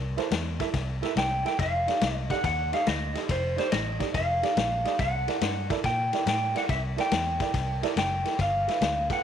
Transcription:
Already playing: fingered electric bass C2
0.17 upright piano E4 A4 A#4 C5, snare, ride
0.31 fingered electric bass E2, snare, ride
0.59 upright piano E4 A4 A#4 E5, kick, snare, ride
0.74 fingered electric bass C2, kick, snare, ride
1.02 upright piano E4 A4 A#4 E5, snare, ride
1.16 fingered electric bass C2, clean electric guitar G5, snare, ride
1.44 upright piano E4 A4 A#4 E5, clean electric guitar G5, snare, ride
1.59 fingered electric bass F1, clean electric guitar F5, kick, snare, ride
1.87 upright piano D#4 G4 A4 D5, snare, ride
2.01 fingered electric bass C2, snare, ride
2.15 clean electric guitar D#5
2.30 upright piano D#4 G4 A4 D5, clean electric guitar F#5, kick, snare, ride
2.44 fingered electric bass D#2, clean electric guitar F#5, kick, snare, ride
2.72 upright piano D#4 G4 A4 D#5, clean electric guitar F5, snare, ride
2.86 fingered electric bass D2, clean electric guitar D#5, snare, ride
3.14 upright piano D#4 G4 A4 D#5, snare, ride
3.29 fingered electric bass F1, clean electric guitar C5, kick, snare, ride
3.56 upright piano D#4 G4 A4 D5, clean electric guitar C5, snare, ride
3.72 fingered electric bass A1, clean electric guitar D#5, snare, ride
3.99 upright piano D#4 G4 A4 D5, kick, snare, ride
4.14 fingered electric bass F1, clean electric guitar F5, kick, snare, ride
4.42 upright piano D#4 G4 A4 D5, snare, ride
4.57 fingered electric bass A#1, snare, ride
4.85 upright piano D#4 G4 A4 D5, snare, ride
4.99 fingered electric bass C2, clean electric guitar F#5, kick, snare, ride
5.27 upright piano E4 A4 A#4 D5, snare, ride
5.41 fingered electric bass G2, snare, ride
5.69 upright piano E4 A4 A#4 D5, kick, snare, ride
5.84 fingered electric bass A#2, clean electric guitar G5, kick, snare, ride
6.13 upright piano E4 A4 A#4 D5, snare, ride
6.26 fingered electric bass A2, clean electric guitar G5, snare, ride
6.54 upright piano E4 A4 A#4 D5, clean electric guitar F#5, snare, ride
6.69 fingered electric bass C2, clean electric guitar E5, kick, snare, ride
6.97 upright piano E4 A4 A#4 D5, clean electric guitar G5, snare, ride
7.11 fingered electric bass E2, snare, ride
7.40 upright piano E4 A4 A#4 D5, kick, snare, ride
7.54 fingered electric bass C2, kick, snare, ride
7.82 upright piano E4 A4 A#4 D5, snare, ride
7.96 fingered electric bass F#1, clean electric guitar G5, snare, ride
8.25 upright piano E4 A4 A#4 E5, snare, ride
8.39 fingered electric bass G1, clean electric guitar F5, kick, snare, ride
8.67 upright piano F4 A4 B4 E5, snare, ride
8.81 fingered electric bass D2, snare, ride
9.09 upright piano F4 A4 B4 G5, clean electric guitar F#5, kick, snare, ride

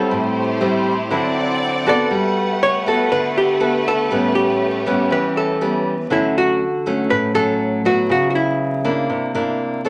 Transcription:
Already playing: nylon-string guitar G3 C4 E4, hollow-body jazz guitar A4
0.11 nylon-string guitar A2, violin section A3 E4 G4 C5
0.61 nylon-string guitar G3 C4 E4
1.09 nylon-string guitar D3 F#3 C4 E4, violin section C4 D5 F#5
1.86 nylon-string guitar B3 F#4 A4, hollow-body jazz guitar D5
2.10 nylon-string guitar G3, violin section A3 B4
2.63 hollow-body jazz guitar C#5
2.86 nylon-string guitar B3 F#4 A4
3.11 nylon-string guitar D3, hollow-body jazz guitar B4
3.38 hollow-body jazz guitar G4
3.60 nylon-string guitar B3 F#4 A4
3.88 hollow-body jazz guitar A4
4.11 nylon-string guitar A2 G3 B3 C#4, violin section C#4 G4
4.35 hollow-body jazz guitar G4
4.86 nylon-string guitar G3 B3 C#4
5.10 nylon-string guitar E3, hollow-body jazz guitar B4
5.37 hollow-body jazz guitar A4
5.61 nylon-string guitar G3 B3 C#4
6.10 nylon-string guitar D3 F#3 A3 C#4, hollow-body jazz guitar E4
6.38 hollow-body jazz guitar F#4
6.86 nylon-string guitar F#3 A3 C#4
7.10 nylon-string guitar A2, hollow-body jazz guitar B4
7.35 nylon-string guitar F#3 A3 C#4, hollow-body jazz guitar A4
7.85 nylon-string guitar F#3 B3 E4, hollow-body jazz guitar F#4
8.09 nylon-string guitar C#3, hollow-body jazz guitar F#4
8.30 hollow-body jazz guitar F#4
8.35 hollow-body jazz guitar E4
8.85 nylon-string guitar A#3 D4 E4
9.10 nylon-string guitar C3
9.35 nylon-string guitar A#3 D4 E4
9.85 nylon-string guitar D4 A4 C#5

